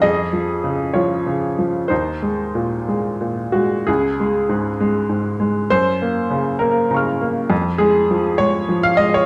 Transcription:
<<
  \new Staff \with { instrumentName = "Upright piano" } { \time 6/8 \key des \major \tempo 4. = 66 << { aes'4. f'4. | ees'4. r4. | r2. | r2 <bes'' des''' f'''>4 |
r2. | } \\ { ees''4. des''4. | c''4. r4 ges'8 | aes'2. | c''4. bes'4 r8 |
r8 aes'4 des''8. f''16 ees''16 des''16 | } >> }
  \new Staff \with { instrumentName = "Upright piano" } { \clef bass \time 6/8 \key des \major f,8 f8 des8 f8 des8 f8 | ees,8 aes8 bes,8 aes8 bes,8 aes8 | des,8 aes8 aes,8 aes8 aes,8 aes8 | ges,8 bes8 des8 bes8 des8 bes8 |
f,8 aes8 f8 aes8 f8 aes8 | }
>>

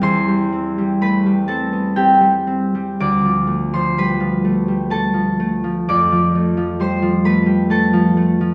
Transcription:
<<
  \new Staff \with { instrumentName = "Harp" } { \time 3/4 \key d \dorian \tempo 4 = 63 <g' c'' g'' c'''>4 <b' b''>8 <a' a''>8 <g' g''>4 | <d'' d'''>8. <c'' c'''>16 <b' b''>4 <a' a''>4 | <d'' d'''>4 <c'' c'''>8 <b' b''>8 <a' a''>4 | }
  \new Staff \with { instrumentName = "Harp" } { \clef bass \time 3/4 \key d \dorian <e, g c'>16 g16 c'16 g16 a16 g16 c'16 b16 c'16 g16 c'16 g16 | d,16 f16 a16 f16 g16 f16 a16 g16 a16 f16 a16 f16 | f,16 f16 a16 f16 g16 f16 a16 g16 a16 f16 a16 f16 | }
>>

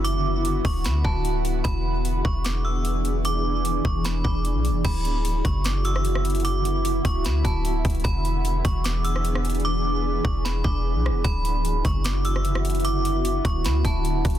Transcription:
<<
  \new Staff \with { instrumentName = "Synth bell" } { \time 4/4 \key d \lydian \tempo 4 = 150 d'''4. cis'''8 b''8 a''8 r4 | b''4. cis'''8 d'''8 e'''8 r4 | d'''4. cis'''8 b''8 d'''4. | b''4. cis'''8 d'''8 e'''8 r4 |
d'''4. cis'''8 b''8 a''8 r4 | b''4. cis'''8 d'''8 e'''8 r4 | d'''4. cis'''8 b''8 d'''4. | b''4. cis'''8 d'''8 e'''8 r4 |
d'''4. cis'''8 b''8 a''8 r4 | }
  \new Staff \with { instrumentName = "Ambient pad" } { \time 4/4 \key d \lydian << { <d e' fis'>1 | <e d' gis'>1~ | <e d' gis'>1 | <d e' fis'>1~ |
<d e' fis'>1 | <e d' gis'>1~ | <e d' gis'>1 | <d e' fis'>1~ |
<d e' fis'>1 | } \\ { b1~ | b1~ | b1 | b1~ |
b1~ | b1~ | b1 | b1~ |
b1 | } >> }
  \new Staff \with { instrumentName = "808-style bass" } { \clef bass \time 4/4 \key d \lydian fis,,4. d,,8 d,8 d,,4. | e,,4. e,,2~ e,,8~ | e,,4. e,,4 e,,8. b,,16. e,,16. | d,,4. fis,,2~ fis,,8~ |
fis,,4. d,,8 d,8 d,,4 d,,8 | e,,4. e,,2~ e,,8~ | e,,4. e,,4 e,,8. b,,16. e,,16. | d,,4. fis,,2~ fis,,8~ |
fis,,4. d,,8 d,8 d,,4 d,,8 | }
  \new DrumStaff \with { instrumentName = "Drums" } \drummode { \time 4/4 hh4 hh8 <hho bd>8 <hh sn>8 bd8 hh8 hh8 | <hh bd>4 hh8 bd8 <hh sn>4 hh8 hh8 | hh4 hh8 bd8 <hh sn>8 bd8 hh8 hh8 | <cymc hh bd>8 hh8 hh8 <hh bd>8 <hh sn>8 hh16 ss16 hh16 ss16 hh32 hh32 hh32 hh32 |
hh8 hh8 hh8 <hh bd>8 <hh sn>8 <hh bd>8 hh8 <hh bd>32 hh32 hh32 hh32 | <hh bd>8 hh8 hh8 <hh bd>8 <hh sn>8 hh16 ss16 hh16 ss16 hh32 hh32 hh32 hh32 | r4 r8 bd8 sn8 bd8 r8 ss8 | <hh bd>8 hh8 hh8 <hh bd>8 <hh sn>8 hh16 ss16 hh16 ss16 hh32 hh32 hh32 hh32 |
hh8 hh8 hh8 <hh bd>8 <hh sn>8 <hh bd>8 hh8 <hh bd>32 hh32 hh16 | }
>>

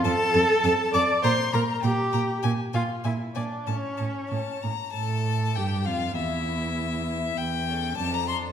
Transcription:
<<
  \new Staff \with { instrumentName = "Violin" } { \time 2/4 \key f \major \tempo 4 = 99 a''8 a''8 a''8 a''8 | bes''8 bes''8 bes''8 bes''8 | aes''8 aes''8 aes''8 aes''8 | a''8 a''8 a''8 bes''8 |
a''4 g''8 f''8 | e''2 | g''4 a''16 bes''16 c'''8 | }
  \new Staff \with { instrumentName = "Violin" } { \time 2/4 \key f \major a''4. d'''8 | c'''8 bes''8 g''4 | r8 f''8 e''8 d''8 | cis''4. r8 |
a'4 g'8 f'8 | e'2 | r8 a'8 a'8 a'8 | }
  \new Staff \with { instrumentName = "Viola" } { \time 2/4 \key f \major a'4. d''8 | c''8 bes'8 g'4 | r8 f'8 e'8 d'8 | cis'4. r8 |
a'4 g'8 f'8 | e'2 | r8 cis'8 d'8 d'8 | }
  \new Staff \with { instrumentName = "Cello" } { \clef bass \time 2/4 \key f \major f,8 f,8 f,8 f,8 | bes,8 bes,8 bes,8 bes,8 | bes,8 bes,8 bes,8 bes,8 | a,8 a,8 a,8 a,8 |
a,4 g,8 f,8 | e,2 | e,4 f,4 | }
>>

